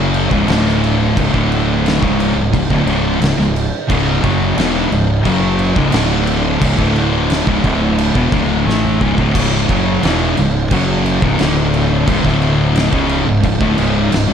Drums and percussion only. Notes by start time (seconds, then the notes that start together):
0.14 crash
0.31 kick
0.48 snare, crash
0.68 snare
0.84 crash
1.17 kick, crash
1.34 kick
1.52 crash
1.86 snare, crash
2.03 kick
2.20 crash
2.54 kick, crash
2.70 kick
2.87 crash
3.22 snare, crash
3.41 snare
3.56 crash
3.90 kick, crash
4.24 kick, crash
4.58 snare, crash
4.92 crash
5.25 kick, crash
5.59 crash
5.76 kick
5.92 snare, crash
6.27 crash
6.61 kick, crash
6.79 kick
6.96 crash
7.30 snare, crash
7.47 kick
7.64 kick, crash
7.98 crash
8.15 kick
8.32 kick, crash
8.69 snare
8.84 mid tom
9.01 kick
9.18 kick
9.35 kick, crash
9.55 snare
9.69 kick, crash
10.03 snare, crash
10.37 crash
10.71 kick, crash
11.06 crash
11.22 kick
11.39 snare, crash
11.74 crash
12.08 kick, crash
12.25 kick, snare
12.42 crash
12.76 snare, crash
12.93 kick
13.09 crash
13.43 kick, crash
13.61 kick
13.78 crash
14.12 snare, crash